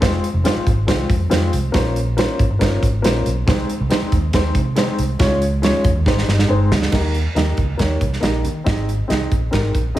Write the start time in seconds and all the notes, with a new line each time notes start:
0.01 F1 G#3 C4 F4 C5, kick, snare, closed hi-hat
0.24 closed hi-hat
0.34 F1
0.44 G#3 C4 F4 C5, snare, closed hi-hat
0.56 muted fingered electric bass stroke
0.66 G#1, kick, closed hi-hat
0.87 C2 G#3 C4 F4 C5, kick, snare, closed hi-hat
1.09 F2, kick, closed hi-hat
1.30 F2 G#3 C4 F4 C5, snare, closed hi-hat
1.53 C2, closed hi-hat
1.72 A#1 A#3 C#4 F4 C5, kick, snare, closed hi-hat
1.96 closed hi-hat
2.17 A#3 C#4 F4 C5, snare, closed hi-hat
2.39 G#1, kick, closed hi-hat
2.50 G1
2.59 G1 A#3 C#4 F4 C5, kick, snare, closed hi-hat
2.83 G#1, kick, closed hi-hat
3.02 A#1 A#3 C#4 F4 C5, snare, closed hi-hat
3.26 B1, closed hi-hat
3.47 C2 G#3 C4 D#4 C5, kick, snare, closed hi-hat
3.70 closed hi-hat
3.80 C2
3.90 G#3 C4 D#4 C5, snare, closed hi-hat
4.02 muted fingered electric bass stroke
4.12 D#2, kick, closed hi-hat
4.33 D#2 G#3 C4 D#4 C5, kick, snare, closed hi-hat
4.55 C3, kick, closed hi-hat
4.75 G#3 C4 D#4 C5, snare, closed hi-hat
4.99 C2, closed hi-hat
5.19 C#2 G#3 C#4 F4 C#5, kick, snare, closed hi-hat
5.42 closed hi-hat
5.62 G#3 C#4 F4 C#5, snare, closed hi-hat
5.84 D#2, kick, closed hi-hat
5.95 D#2
6.06 G#1 G#3 C4 D#4 C5, kick, snare
6.18 snare
6.27 G1, snare
6.39 snare
6.48 G1 G#3 C4 D#4 C5
6.70 D2, snare
6.82 snare
6.92 D#2 A#3 D#4 G4 D#5, kick, snare, crash
7.14 closed hi-hat
7.35 D#2 A#3 D#4 G4 D#5, snare, closed hi-hat
7.57 C#2, kick, closed hi-hat
7.77 D#2 A#3 D#4 G4 C#5, kick, snare, closed hi-hat
8.01 C2, kick, closed hi-hat
8.13 snare
8.20 A#1 A#3 D#4 G4 D#5, snare, closed hi-hat
8.44 D#3, closed hi-hat
8.64 G#1 C4 D#4 G#4 D#5, kick, snare, closed hi-hat
8.89 closed hi-hat
9.08 C2 C4 D#4 G#4 D#5, snare, closed hi-hat
9.32 A#1, kick, closed hi-hat
9.51 G#1 C4 D#4 G#4 A#4, kick, snare, closed hi-hat
9.74 A#1, kick, closed hi-hat
9.95 G#1 C4 D#4 G#4